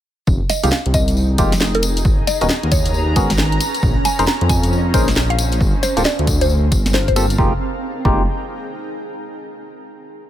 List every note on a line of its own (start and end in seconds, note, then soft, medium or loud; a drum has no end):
0.27 0.40 F1 loud
0.27 2.68 D#4 loud
0.27 kick loud
0.27 tambourine soft
0.50 0.61 D#5 medium
0.50 snare soft
0.50 closed hi-hat loud
0.50 tambourine loud
0.59 2.68 G#4 medium
0.63 0.71 C2 medium
0.63 0.69 G#3 medium
0.63 0.69 A#3 medium
0.63 0.69 D#4 medium
0.63 0.69 F4 medium
0.63 0.69 G4 medium
0.63 0.69 F5 medium
0.63 closed hi-hat medium
0.63 tambourine soft
0.72 0.81 F5 medium
0.72 snare loud
0.86 1.37 C2 loud
0.86 closed hi-hat medium
0.94 1.08 D#5 medium
0.94 kick loud
0.94 closed hi-hat loud
0.94 tambourine loud
1.01 4.43 A#5 medium
1.08 closed hi-hat medium
1.08 tambourine medium
1.17 tambourine soft
1.38 2.04 F1 medium
1.38 1.53 G#3 medium
1.38 1.53 A#3 medium
1.38 1.53 D#4 medium
1.38 1.53 F4 medium
1.38 1.53 G4 medium
1.38 kick loud
1.38 closed hi-hat loud
1.38 tambourine medium
1.52 snare medium
1.52 closed hi-hat medium
1.52 tambourine medium
1.60 snare loud
1.60 tambourine soft
1.75 1.84 A#4 medium
1.75 closed hi-hat medium
1.83 closed hi-hat loud
1.83 tambourine medium
1.97 closed hi-hat medium
1.97 tambourine medium
2.05 2.17 G#1 loud
2.05 5.61 C#4 medium
2.05 kick loud
2.05 tambourine soft
2.27 2.39 D#5 medium
2.27 snare soft
2.27 closed hi-hat loud
2.27 tambourine loud
2.41 2.49 D#1 medium
2.41 2.47 B3 medium
2.41 2.47 C#4 medium
2.41 2.47 F#4 medium
2.41 2.47 G#4 medium
2.41 2.47 A#4 medium
2.41 2.50 D#5 medium
2.41 closed hi-hat medium
2.41 tambourine medium
2.49 snare loud
2.49 tambourine soft
2.63 3.15 D#2 loud
2.63 closed hi-hat medium
2.72 3.35 C#5 medium
2.72 kick loud
2.72 closed hi-hat loud
2.72 tambourine loud
2.85 closed hi-hat medium
2.85 tambourine medium
2.94 tambourine soft
3.16 3.59 G#1 medium
3.16 3.31 B3 medium
3.16 3.31 C#4 medium
3.16 3.31 F#4 medium
3.16 3.31 G#4 medium
3.16 3.31 A#4 medium
3.16 kick loud
3.16 closed hi-hat loud
3.16 tambourine medium
3.30 snare medium
3.30 closed hi-hat medium
3.30 tambourine medium
3.38 snare loud
3.38 tambourine soft
3.52 closed hi-hat medium
3.61 closed hi-hat loud
3.61 tambourine loud
3.74 6.30 C5 medium
3.74 closed hi-hat medium
3.74 tambourine medium
3.83 3.95 A#1 loud
3.83 kick loud
3.83 tambourine soft
4.05 4.16 G#5 medium
4.05 snare soft
4.05 closed hi-hat loud
4.05 tambourine loud
4.19 4.26 F1 medium
4.19 4.25 C#4 medium
4.19 4.25 D#4 medium
4.19 4.25 G#4 medium
4.19 4.25 A#4 medium
4.19 4.25 C5 medium
4.19 4.24 A#5 medium
4.19 closed hi-hat medium
4.19 tambourine medium
4.27 4.36 A#5 medium
4.27 snare loud
4.27 tambourine soft
4.41 4.93 F2 loud
4.41 closed hi-hat medium
4.49 4.64 G#5 medium
4.49 kick loud
4.49 closed hi-hat loud
4.49 tambourine loud
4.63 closed hi-hat medium
4.63 tambourine medium
4.73 tambourine soft
4.94 5.59 A#1 medium
4.94 5.09 C#4 medium
4.94 5.09 D#4 medium
4.94 5.09 G#4 medium
4.94 5.09 A#4 medium
4.94 5.09 C5 medium
4.94 kick loud
4.94 closed hi-hat loud
4.94 tambourine medium
5.08 snare medium
5.08 closed hi-hat medium
5.08 tambourine medium
5.16 snare loud
5.16 tambourine soft
5.30 5.39 F5 medium
5.30 closed hi-hat medium
5.39 closed hi-hat loud
5.39 tambourine loud
5.52 closed hi-hat medium
5.52 tambourine medium
5.61 5.73 G1 loud
5.61 7.39 C4 medium
5.61 kick loud
5.61 tambourine soft
5.74 7.38 A#4 medium
5.83 5.97 C5 medium
5.83 snare soft
5.83 closed hi-hat loud
5.83 tambourine loud
5.97 6.04 D1 medium
5.97 6.03 A#3 medium
5.97 6.03 C4 medium
5.97 6.03 F4 medium
5.97 6.03 G4 medium
5.97 6.03 A4 medium
5.97 closed hi-hat medium
5.97 tambourine medium
6.05 6.39 D5 loud
6.05 snare loud
6.19 6.70 D2 loud
6.19 closed hi-hat medium
6.27 kick loud
6.27 closed hi-hat loud
6.27 tambourine loud
6.41 6.50 C5 medium
6.41 closed hi-hat medium
6.41 tambourine medium
6.49 tambourine soft
6.72 7.37 G1 medium
6.72 kick loud
6.72 closed hi-hat loud
6.72 tambourine loud
6.86 snare medium
6.86 closed hi-hat medium
6.86 tambourine medium
6.94 7.03 C5 medium
6.94 snare loud
6.94 tambourine soft
7.08 7.13 C5 medium
7.08 kick medium
7.08 closed hi-hat medium
7.16 7.26 A#3 loud
7.16 7.26 C4 medium
7.16 7.26 F4 medium
7.16 7.26 G4 medium
7.16 7.26 A4 loud
7.16 closed hi-hat loud
7.16 tambourine loud
7.30 closed hi-hat medium
7.30 tambourine medium
7.38 7.53 F1 loud
7.38 7.53 G#3 medium
7.38 7.53 A#3 medium
7.38 9.12 D#4 medium
7.38 7.53 D#4 medium
7.38 7.53 F4 medium
7.38 7.53 G4 loud
7.38 kick loud
7.47 9.12 G#4 medium
7.54 9.12 G5 medium
7.59 9.12 A#5 medium
8.05 8.26 F1 loud
8.05 8.23 G#3 medium
8.05 8.23 A#3 medium
8.05 8.23 D#4 medium
8.05 8.23 F4 medium
8.05 8.23 G4 loud
8.05 kick loud